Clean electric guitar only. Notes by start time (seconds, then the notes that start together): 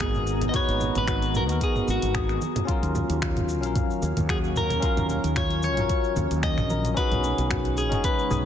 0.02 G#4
0.49 D#5
0.56 C#5
0.98 B4
1.37 A#4
1.63 G#4
1.90 F#4
4.30 G#4
4.57 A#4
5.37 C#5
5.64 C#5
6.44 D#5
6.97 B4
7.78 G#4
8.05 B4